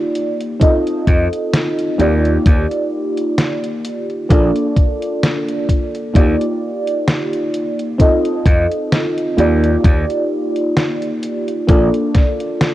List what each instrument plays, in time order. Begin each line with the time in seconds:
Already playing: fm electric piano A#3 D#4 F4 G4 D5
0.15 closed hi-hat
0.41 closed hi-hat
0.60 fm electric piano C4 D#4 F4 A4 D#5, kick, closed hi-hat
0.87 closed hi-hat
1.07 slap bass F2, kick, closed hi-hat
1.33 closed hi-hat
1.54 snare, closed hi-hat
1.79 closed hi-hat
1.98 slap bass D#2, fm electric piano A#3 D#4 F4 G4 D5, closed hi-hat
2.25 closed hi-hat
2.46 slap bass D#2, kick, closed hi-hat
2.71 closed hi-hat
3.17 closed hi-hat
3.38 snare, closed hi-hat
3.64 closed hi-hat
3.85 closed hi-hat
4.10 closed hi-hat
4.29 slap bass A#1, fm electric piano A#3 D4 F4 A4 D5, kick, closed hi-hat
4.56 closed hi-hat
4.76 kick, closed hi-hat
5.02 closed hi-hat
5.23 snare, closed hi-hat
5.48 closed hi-hat
5.69 kick, closed hi-hat
5.95 closed hi-hat
6.14 slap bass D#2, fm electric piano A#3 D#4 F4 G4 D5, kick, closed hi-hat
6.41 closed hi-hat
6.87 closed hi-hat
7.08 snare, closed hi-hat
7.33 closed hi-hat
7.54 closed hi-hat
7.79 closed hi-hat
7.98 fm electric piano C4 D#4 F4 A4 D#5, kick, closed hi-hat
8.25 closed hi-hat
8.46 slap bass F2, kick, closed hi-hat
8.71 closed hi-hat
8.92 snare, closed hi-hat
9.18 closed hi-hat
9.37 slap bass D#2, fm electric piano A#3 D#4 F4 G4 D5, closed hi-hat
9.64 closed hi-hat
9.84 slap bass D#2, kick, closed hi-hat
10.10 closed hi-hat
10.56 closed hi-hat
10.77 snare, closed hi-hat
11.02 closed hi-hat
11.23 closed hi-hat
11.48 closed hi-hat
11.67 slap bass A#1, fm electric piano A#3 D4 F4 A4 D5, kick, closed hi-hat
11.94 closed hi-hat
12.15 kick, snare, closed hi-hat
12.40 closed hi-hat
12.61 snare, closed hi-hat